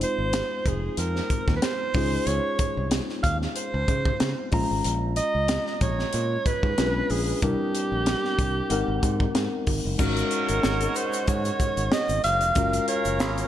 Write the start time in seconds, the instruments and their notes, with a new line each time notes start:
Already playing: tine electric piano G#3 C4 D#4 F4 C5
0.01 alto saxophone C5, closed hi-hat
0.18 fingered electric bass G#1
0.33 snare, closed hi-hat
0.66 fingered electric bass F1, alto saxophone G#4, kick, closed hi-hat
0.97 fingered electric bass F2, alto saxophone A#4, closed hi-hat
1.16 snare
1.30 kick, closed hi-hat
1.48 fingered electric bass D#2, kick, snare
1.56 alto saxophone B4
1.62 alto saxophone C5, snare, closed hi-hat
1.94 fingered electric bass C#2, tine electric piano G#3 C#4 D#4 F4 G#4, kick, open hi-hat
2.27 fingered electric bass C#2, alto saxophone C#5, closed hi-hat
2.59 kick, closed hi-hat
2.77 fingered electric bass C2
2.91 snare, closed hi-hat
3.09 snare
3.23 fingered electric bass D#2, alto saxophone F5, kick, closed hi-hat
3.42 snare
3.56 alto saxophone C5, closed hi-hat
3.74 fingered electric bass C#2
3.88 fingered electric bass C#3, kick, closed hi-hat
4.05 kick
4.20 fingered electric bass C#3, snare, closed hi-hat
4.52 fingered electric bass A#1, tine electric piano G#3 C#4 F4 A#5, kick, open hi-hat
4.71 fingered electric bass G#1
4.84 fingered electric bass A#1, closed hi-hat
5.16 alto saxophone D#5, closed hi-hat
5.35 fingered electric bass C#2
5.48 snare, closed hi-hat
5.66 snare
5.81 fingered electric bass A#1, alto saxophone C#5, kick, closed hi-hat
5.99 snare
6.13 fingered electric bass A#2, closed hi-hat
6.46 alto saxophone B4, kick, closed hi-hat
6.63 fingered electric bass G#2, kick
6.78 fingered electric bass B1, tine electric piano G#3 C#4 D4 F4 A#4, snare, closed hi-hat
6.86 tine electric piano B4
7.10 fingered electric bass A#1, alto saxophone G#4, open hi-hat
7.41 fingered electric bass C2, tine electric piano G3 C4 D4 E4 A#4, alto saxophone G4, kick, closed hi-hat
7.75 closed hi-hat
7.92 fingered electric bass A#1
8.06 snare, closed hi-hat
8.24 snare
8.38 fingered electric bass C2, kick, closed hi-hat
8.69 fingered electric bass G#1, tine electric piano G#3 C4 D#4 A#4 F#5, closed hi-hat
8.88 fingered electric bass G#1
9.03 fingered electric bass G#2, kick, closed hi-hat
9.20 kick
9.35 fingered electric bass G#2, snare, closed hi-hat
9.67 fingered electric bass G#1, kick, open hi-hat
9.85 fingered electric bass F#1
9.98 fingered electric bass G#1, tine electric piano G#3 C#4 D#4 F#4 A#4, horn section G#3 F#4 C#5, alto saxophone A#4, kick, crash, shaker
10.17 closed hi-hat, shaker
10.31 closed hi-hat
10.49 fingered electric bass G#1, closed hi-hat, shaker
10.63 fingered electric bass G#1, snare, shaker
10.81 closed hi-hat, shaker
10.95 alto saxophone C5, closed hi-hat, shaker
11.13 closed hi-hat, shaker
11.28 fingered electric bass G#2, alto saxophone C#5, kick, closed hi-hat, shaker
11.45 closed hi-hat, shaker
11.60 kick, closed hi-hat, shaker
11.77 fingered electric bass G#1, closed hi-hat, shaker
11.92 alto saxophone D#5, snare, shaker
12.09 fingered electric bass G#1, closed hi-hat, shaker
12.24 fingered electric bass F#1, alto saxophone F5, closed hi-hat, shaker
12.41 fingered electric bass F1, closed hi-hat, shaker
12.55 fingered electric bass F#1, tine electric piano G#3 C#4 F4 F#4 A#4, horn section C#4 A#4 F5, kick, closed hi-hat, shaker
12.73 closed hi-hat, shaker
12.88 alto saxophone C#5, closed hi-hat
13.05 fingered electric bass F#1, closed hi-hat, shaker
13.20 fingered electric bass G#1, snare, shaker
13.38 closed hi-hat, shaker